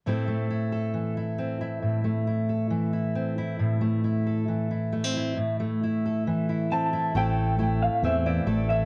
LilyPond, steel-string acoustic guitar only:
\new Staff \with { instrumentName = "Steel-string acoustic guitar" } { \time 4/4 \key a \phrygian \tempo 4 = 135 << { <a c' e' a'>4 e'8 a'4 e'8 c'8 e'8 | r4 e'8 a'4 e'8 c'8 e'8 | r4 e'8 a'4 e'8 a16 c'16 e'8 | r4 e'8 a'4 e'8 c'8 e'8 |
<a c' e' a'>4 e'4 c'8 e'8 a'8 e'8 | } \\ { a,8 a4. e2 | a,8 a4. e2 | a,8 a4. e2 | a,8 a4. e2 |
a,4 a4 e4 a4 | } >> }